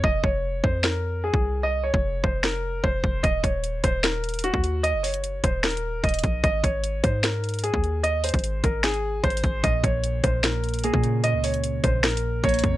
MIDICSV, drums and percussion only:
0, 0, Header, 1, 2, 480
1, 0, Start_track
1, 0, Key_signature, -5, "minor"
1, 0, Tempo, 400000
1, 46, Time_signature, 4, 2, 24, 8
1, 15328, End_track
2, 0, Start_track
2, 0, Title_t, "Drums"
2, 45, Note_on_c, 9, 36, 116
2, 165, Note_off_c, 9, 36, 0
2, 284, Note_on_c, 9, 36, 96
2, 404, Note_off_c, 9, 36, 0
2, 765, Note_on_c, 9, 36, 100
2, 885, Note_off_c, 9, 36, 0
2, 1005, Note_on_c, 9, 38, 108
2, 1125, Note_off_c, 9, 38, 0
2, 1603, Note_on_c, 9, 36, 95
2, 1723, Note_off_c, 9, 36, 0
2, 2325, Note_on_c, 9, 36, 96
2, 2445, Note_off_c, 9, 36, 0
2, 2685, Note_on_c, 9, 36, 99
2, 2805, Note_off_c, 9, 36, 0
2, 2925, Note_on_c, 9, 38, 110
2, 3045, Note_off_c, 9, 38, 0
2, 3404, Note_on_c, 9, 36, 94
2, 3524, Note_off_c, 9, 36, 0
2, 3644, Note_on_c, 9, 36, 92
2, 3764, Note_off_c, 9, 36, 0
2, 3884, Note_on_c, 9, 42, 86
2, 3885, Note_on_c, 9, 36, 119
2, 4004, Note_off_c, 9, 42, 0
2, 4005, Note_off_c, 9, 36, 0
2, 4124, Note_on_c, 9, 36, 92
2, 4127, Note_on_c, 9, 42, 86
2, 4244, Note_off_c, 9, 36, 0
2, 4247, Note_off_c, 9, 42, 0
2, 4364, Note_on_c, 9, 42, 91
2, 4484, Note_off_c, 9, 42, 0
2, 4605, Note_on_c, 9, 36, 98
2, 4605, Note_on_c, 9, 42, 92
2, 4725, Note_off_c, 9, 36, 0
2, 4725, Note_off_c, 9, 42, 0
2, 4845, Note_on_c, 9, 38, 111
2, 4845, Note_on_c, 9, 42, 76
2, 4965, Note_off_c, 9, 38, 0
2, 4965, Note_off_c, 9, 42, 0
2, 5085, Note_on_c, 9, 42, 49
2, 5145, Note_off_c, 9, 42, 0
2, 5145, Note_on_c, 9, 42, 58
2, 5205, Note_off_c, 9, 42, 0
2, 5205, Note_on_c, 9, 42, 72
2, 5265, Note_off_c, 9, 42, 0
2, 5265, Note_on_c, 9, 42, 79
2, 5326, Note_off_c, 9, 42, 0
2, 5326, Note_on_c, 9, 42, 81
2, 5444, Note_on_c, 9, 36, 96
2, 5446, Note_off_c, 9, 42, 0
2, 5564, Note_off_c, 9, 36, 0
2, 5565, Note_on_c, 9, 42, 59
2, 5685, Note_off_c, 9, 42, 0
2, 5806, Note_on_c, 9, 42, 83
2, 5926, Note_off_c, 9, 42, 0
2, 6047, Note_on_c, 9, 42, 51
2, 6049, Note_on_c, 9, 46, 90
2, 6165, Note_off_c, 9, 42, 0
2, 6165, Note_on_c, 9, 42, 89
2, 6169, Note_off_c, 9, 46, 0
2, 6284, Note_off_c, 9, 42, 0
2, 6284, Note_on_c, 9, 42, 92
2, 6404, Note_off_c, 9, 42, 0
2, 6525, Note_on_c, 9, 36, 97
2, 6525, Note_on_c, 9, 42, 91
2, 6645, Note_off_c, 9, 36, 0
2, 6645, Note_off_c, 9, 42, 0
2, 6764, Note_on_c, 9, 42, 47
2, 6765, Note_on_c, 9, 38, 111
2, 6845, Note_off_c, 9, 42, 0
2, 6845, Note_on_c, 9, 42, 64
2, 6885, Note_off_c, 9, 38, 0
2, 6925, Note_off_c, 9, 42, 0
2, 6925, Note_on_c, 9, 42, 83
2, 7045, Note_off_c, 9, 42, 0
2, 7244, Note_on_c, 9, 36, 93
2, 7245, Note_on_c, 9, 42, 50
2, 7305, Note_off_c, 9, 42, 0
2, 7305, Note_on_c, 9, 42, 63
2, 7364, Note_off_c, 9, 36, 0
2, 7365, Note_off_c, 9, 42, 0
2, 7365, Note_on_c, 9, 42, 74
2, 7424, Note_off_c, 9, 42, 0
2, 7424, Note_on_c, 9, 42, 83
2, 7482, Note_off_c, 9, 42, 0
2, 7482, Note_on_c, 9, 42, 61
2, 7484, Note_on_c, 9, 36, 95
2, 7602, Note_off_c, 9, 42, 0
2, 7604, Note_off_c, 9, 36, 0
2, 7724, Note_on_c, 9, 36, 117
2, 7725, Note_on_c, 9, 42, 82
2, 7844, Note_off_c, 9, 36, 0
2, 7845, Note_off_c, 9, 42, 0
2, 7964, Note_on_c, 9, 36, 93
2, 7967, Note_on_c, 9, 42, 82
2, 8084, Note_off_c, 9, 36, 0
2, 8087, Note_off_c, 9, 42, 0
2, 8204, Note_on_c, 9, 42, 91
2, 8324, Note_off_c, 9, 42, 0
2, 8444, Note_on_c, 9, 42, 90
2, 8445, Note_on_c, 9, 36, 97
2, 8564, Note_off_c, 9, 42, 0
2, 8565, Note_off_c, 9, 36, 0
2, 8684, Note_on_c, 9, 38, 115
2, 8685, Note_on_c, 9, 42, 78
2, 8804, Note_off_c, 9, 38, 0
2, 8805, Note_off_c, 9, 42, 0
2, 8925, Note_on_c, 9, 42, 48
2, 8985, Note_off_c, 9, 42, 0
2, 8985, Note_on_c, 9, 42, 59
2, 9045, Note_off_c, 9, 42, 0
2, 9045, Note_on_c, 9, 42, 72
2, 9104, Note_off_c, 9, 42, 0
2, 9104, Note_on_c, 9, 42, 79
2, 9164, Note_off_c, 9, 42, 0
2, 9164, Note_on_c, 9, 42, 82
2, 9284, Note_off_c, 9, 42, 0
2, 9284, Note_on_c, 9, 36, 93
2, 9404, Note_off_c, 9, 36, 0
2, 9404, Note_on_c, 9, 42, 60
2, 9524, Note_off_c, 9, 42, 0
2, 9645, Note_on_c, 9, 42, 87
2, 9765, Note_off_c, 9, 42, 0
2, 9885, Note_on_c, 9, 42, 85
2, 9887, Note_on_c, 9, 46, 91
2, 9945, Note_off_c, 9, 42, 0
2, 9945, Note_on_c, 9, 42, 74
2, 10005, Note_on_c, 9, 36, 98
2, 10007, Note_off_c, 9, 46, 0
2, 10065, Note_off_c, 9, 42, 0
2, 10065, Note_on_c, 9, 42, 51
2, 10124, Note_off_c, 9, 42, 0
2, 10124, Note_on_c, 9, 42, 90
2, 10125, Note_off_c, 9, 36, 0
2, 10244, Note_off_c, 9, 42, 0
2, 10365, Note_on_c, 9, 36, 98
2, 10365, Note_on_c, 9, 42, 88
2, 10485, Note_off_c, 9, 36, 0
2, 10485, Note_off_c, 9, 42, 0
2, 10605, Note_on_c, 9, 38, 114
2, 10605, Note_on_c, 9, 42, 66
2, 10725, Note_off_c, 9, 38, 0
2, 10725, Note_off_c, 9, 42, 0
2, 10725, Note_on_c, 9, 42, 65
2, 10845, Note_off_c, 9, 42, 0
2, 11084, Note_on_c, 9, 36, 94
2, 11084, Note_on_c, 9, 42, 50
2, 11164, Note_off_c, 9, 42, 0
2, 11164, Note_on_c, 9, 42, 67
2, 11204, Note_off_c, 9, 36, 0
2, 11244, Note_off_c, 9, 42, 0
2, 11244, Note_on_c, 9, 42, 83
2, 11323, Note_off_c, 9, 42, 0
2, 11323, Note_on_c, 9, 42, 60
2, 11324, Note_on_c, 9, 36, 96
2, 11443, Note_off_c, 9, 42, 0
2, 11444, Note_off_c, 9, 36, 0
2, 11564, Note_on_c, 9, 36, 121
2, 11565, Note_on_c, 9, 42, 83
2, 11684, Note_off_c, 9, 36, 0
2, 11685, Note_off_c, 9, 42, 0
2, 11804, Note_on_c, 9, 36, 97
2, 11807, Note_on_c, 9, 42, 86
2, 11924, Note_off_c, 9, 36, 0
2, 11927, Note_off_c, 9, 42, 0
2, 12044, Note_on_c, 9, 42, 89
2, 12164, Note_off_c, 9, 42, 0
2, 12284, Note_on_c, 9, 42, 91
2, 12285, Note_on_c, 9, 36, 97
2, 12404, Note_off_c, 9, 42, 0
2, 12405, Note_off_c, 9, 36, 0
2, 12525, Note_on_c, 9, 38, 115
2, 12525, Note_on_c, 9, 42, 77
2, 12645, Note_off_c, 9, 38, 0
2, 12645, Note_off_c, 9, 42, 0
2, 12764, Note_on_c, 9, 42, 50
2, 12824, Note_off_c, 9, 42, 0
2, 12824, Note_on_c, 9, 42, 62
2, 12884, Note_off_c, 9, 42, 0
2, 12884, Note_on_c, 9, 42, 71
2, 12945, Note_off_c, 9, 42, 0
2, 12945, Note_on_c, 9, 42, 83
2, 13003, Note_off_c, 9, 42, 0
2, 13003, Note_on_c, 9, 42, 81
2, 13123, Note_off_c, 9, 42, 0
2, 13123, Note_on_c, 9, 36, 93
2, 13242, Note_on_c, 9, 42, 59
2, 13243, Note_off_c, 9, 36, 0
2, 13362, Note_off_c, 9, 42, 0
2, 13485, Note_on_c, 9, 42, 83
2, 13605, Note_off_c, 9, 42, 0
2, 13725, Note_on_c, 9, 42, 53
2, 13727, Note_on_c, 9, 46, 90
2, 13845, Note_off_c, 9, 42, 0
2, 13845, Note_on_c, 9, 42, 86
2, 13847, Note_off_c, 9, 46, 0
2, 13963, Note_off_c, 9, 42, 0
2, 13963, Note_on_c, 9, 42, 90
2, 14083, Note_off_c, 9, 42, 0
2, 14204, Note_on_c, 9, 42, 87
2, 14205, Note_on_c, 9, 36, 94
2, 14324, Note_off_c, 9, 42, 0
2, 14325, Note_off_c, 9, 36, 0
2, 14444, Note_on_c, 9, 42, 48
2, 14445, Note_on_c, 9, 38, 112
2, 14525, Note_off_c, 9, 42, 0
2, 14525, Note_on_c, 9, 42, 66
2, 14565, Note_off_c, 9, 38, 0
2, 14605, Note_off_c, 9, 42, 0
2, 14605, Note_on_c, 9, 42, 78
2, 14725, Note_off_c, 9, 42, 0
2, 14924, Note_on_c, 9, 36, 95
2, 14925, Note_on_c, 9, 42, 49
2, 14985, Note_off_c, 9, 42, 0
2, 14985, Note_on_c, 9, 42, 62
2, 15044, Note_off_c, 9, 36, 0
2, 15045, Note_off_c, 9, 42, 0
2, 15045, Note_on_c, 9, 42, 74
2, 15105, Note_off_c, 9, 42, 0
2, 15105, Note_on_c, 9, 42, 81
2, 15163, Note_off_c, 9, 42, 0
2, 15163, Note_on_c, 9, 42, 60
2, 15164, Note_on_c, 9, 36, 96
2, 15283, Note_off_c, 9, 42, 0
2, 15284, Note_off_c, 9, 36, 0
2, 15328, End_track
0, 0, End_of_file